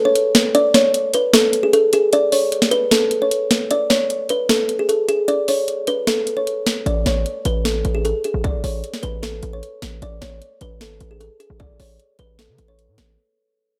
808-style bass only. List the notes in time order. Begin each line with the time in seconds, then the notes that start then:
6.86 A1
7.06 A1
7.45 A1
7.85 A1
8.34 A1
8.64 A1
9.03 A1
9.43 A1
9.82 A1
10.02 A1
10.22 A1
10.61 A1
10.81 G#1
11.01 A1
11.50 A1
11.80 A1
12.19 A1
12.49 C#3
12.59 A1
12.88 A2
12.98 A1